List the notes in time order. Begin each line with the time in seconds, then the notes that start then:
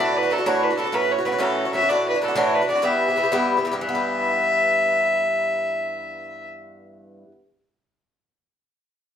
Already playing: D5
0.00 A2 E3 D4 F#4
0.16 B4
0.23 E3 D4 F#4
0.30 A2 E3 D4 F#4 A4
0.38 E3 D4 F#4
0.46 A2 E3 D4 F#4 C#5
0.63 B4
0.70 E3 D4 F#4
0.76 A2 E3 D4 F#4 A4
0.84 E3 D4 F#4
0.92 A2 E3 C#4 F#4 B4
1.11 C#5
1.18 E3 C#4 F#4
1.25 A2 E3 C#4 F#4 B4
1.32 E3 C#4 F#4
1.39 A2 E3 C#4 F#4 A4
1.65 E3 C#4 F#4
1.73 A2 E3 C#4 F#4 E5
1.81 E3 C#4 F#4
1.89 A2 E3 D4 F#4 D5
2.08 B4
2.14 E3 D4 F#4
2.22 A2 E3 D4 F#4 A4
2.28 E3 D4 F#4
2.35 A2 E3 D4 F#4 C#5
2.54 B4
2.62 E3 D4 F#4
2.68 A2 E3 D4 F#4 D5
2.75 E3 D4 F#4
2.82 G2 E3 B3 G4 E5
3.08 E3 B3 G4
3.16 G2 E3 B3 G4
3.23 E3 B3 G4
3.32 G2 E3 B3 G4
3.57 E3 B3 G4
3.65 G2 E3 B3 G4
3.71 G2 E3 B3 G4
3.81 E3 E5
3.89 B3
3.95 G4